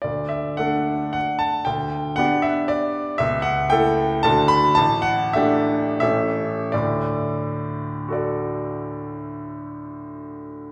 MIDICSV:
0, 0, Header, 1, 2, 480
1, 0, Start_track
1, 0, Key_signature, 2, "major"
1, 0, Tempo, 558659
1, 31, Time_signature, 3, 2, 24, 8
1, 993, Tempo, 511509
1, 3393, Tempo, 526778
1, 4353, Tempo, 583090
1, 4833, Tempo, 679502
1, 8626, End_track
2, 0, Start_track
2, 0, Title_t, "Grand piano"
2, 0, Program_c, 0, 0
2, 14, Note_on_c, 0, 74, 59
2, 38, Note_on_c, 0, 38, 40
2, 193, Control_c, 0, 64, 127
2, 246, Note_on_c, 0, 76, 56
2, 255, Note_off_c, 0, 74, 0
2, 491, Note_on_c, 0, 78, 71
2, 500, Note_off_c, 0, 38, 0
2, 501, Note_off_c, 0, 76, 0
2, 507, Note_on_c, 0, 57, 39
2, 513, Note_on_c, 0, 62, 40
2, 514, Note_on_c, 0, 69, 42
2, 956, Note_off_c, 0, 78, 0
2, 969, Note_on_c, 0, 78, 67
2, 1007, Control_c, 0, 64, 0
2, 1210, Note_on_c, 0, 81, 72
2, 1228, Note_off_c, 0, 78, 0
2, 1440, Note_off_c, 0, 57, 0
2, 1443, Note_off_c, 0, 62, 0
2, 1444, Note_off_c, 0, 69, 0
2, 1455, Note_on_c, 0, 79, 74
2, 1464, Note_off_c, 0, 81, 0
2, 1474, Note_on_c, 0, 38, 45
2, 1650, Control_c, 0, 64, 127
2, 1934, Note_on_c, 0, 78, 80
2, 1946, Note_off_c, 0, 38, 0
2, 1951, Note_off_c, 0, 79, 0
2, 1952, Note_on_c, 0, 59, 47
2, 1959, Note_on_c, 0, 62, 46
2, 1966, Note_on_c, 0, 67, 50
2, 1978, Control_c, 0, 64, 0
2, 2182, Note_on_c, 0, 76, 78
2, 2200, Note_off_c, 0, 78, 0
2, 2425, Note_on_c, 0, 74, 76
2, 2439, Note_off_c, 0, 76, 0
2, 2867, Note_off_c, 0, 59, 0
2, 2870, Note_off_c, 0, 62, 0
2, 2873, Note_off_c, 0, 67, 0
2, 2893, Note_on_c, 0, 76, 85
2, 2895, Note_off_c, 0, 74, 0
2, 2912, Note_on_c, 0, 37, 60
2, 3071, Control_c, 0, 64, 127
2, 3120, Note_on_c, 0, 78, 83
2, 3133, Note_off_c, 0, 76, 0
2, 3378, Note_on_c, 0, 79, 96
2, 3379, Note_off_c, 0, 37, 0
2, 3381, Note_off_c, 0, 78, 0
2, 3397, Note_on_c, 0, 57, 54
2, 3400, Note_on_c, 0, 64, 55
2, 3404, Note_on_c, 0, 69, 62
2, 3839, Note_off_c, 0, 57, 0
2, 3841, Note_off_c, 0, 64, 0
2, 3843, Note_off_c, 0, 69, 0
2, 3863, Note_on_c, 0, 81, 93
2, 3866, Note_off_c, 0, 79, 0
2, 3879, Note_on_c, 0, 38, 59
2, 3882, Note_on_c, 0, 57, 46
2, 3887, Control_c, 0, 64, 0
2, 3888, Note_on_c, 0, 62, 46
2, 3898, Note_on_c, 0, 66, 44
2, 4032, Control_c, 0, 64, 127
2, 4093, Note_on_c, 0, 83, 96
2, 4106, Note_off_c, 0, 81, 0
2, 4321, Note_off_c, 0, 57, 0
2, 4324, Note_off_c, 0, 62, 0
2, 4329, Note_off_c, 0, 66, 0
2, 4337, Note_on_c, 0, 81, 95
2, 4342, Note_off_c, 0, 38, 0
2, 4344, Note_off_c, 0, 83, 0
2, 4358, Note_on_c, 0, 33, 62
2, 4360, Control_c, 0, 64, 0
2, 4509, Control_c, 0, 64, 127
2, 4561, Note_on_c, 0, 78, 88
2, 4574, Note_off_c, 0, 81, 0
2, 4820, Note_on_c, 0, 76, 78
2, 4821, Note_off_c, 0, 33, 0
2, 4823, Note_off_c, 0, 78, 0
2, 4838, Note_on_c, 0, 57, 54
2, 4839, Note_on_c, 0, 62, 55
2, 4841, Note_on_c, 0, 67, 61
2, 5281, Note_off_c, 0, 57, 0
2, 5281, Note_off_c, 0, 62, 0
2, 5282, Note_off_c, 0, 67, 0
2, 5282, Note_off_c, 0, 76, 0
2, 5293, Note_on_c, 0, 76, 80
2, 5304, Note_on_c, 0, 57, 42
2, 5306, Note_on_c, 0, 33, 56
2, 5310, Note_on_c, 0, 61, 41
2, 5313, Note_on_c, 0, 67, 40
2, 5314, Control_c, 0, 64, 0
2, 5476, Control_c, 0, 64, 127
2, 5775, Note_off_c, 0, 57, 0
2, 5778, Note_off_c, 0, 61, 0
2, 5779, Note_off_c, 0, 67, 0
2, 5789, Note_off_c, 0, 33, 0
2, 5797, Note_off_c, 0, 76, 0
2, 5801, Note_on_c, 0, 74, 65
2, 5815, Note_on_c, 0, 45, 52
2, 5816, Control_c, 0, 64, 0
2, 5817, Note_on_c, 0, 38, 48
2, 5990, Control_c, 0, 64, 127
2, 6765, Note_on_c, 0, 66, 40
2, 6778, Note_on_c, 0, 69, 43
2, 6783, Note_off_c, 0, 74, 0
2, 6794, Note_on_c, 0, 74, 44
2, 8626, Note_off_c, 0, 38, 0
2, 8626, Note_off_c, 0, 45, 0
2, 8626, Note_off_c, 0, 66, 0
2, 8626, Note_off_c, 0, 69, 0
2, 8626, Note_off_c, 0, 74, 0
2, 8626, End_track
0, 0, End_of_file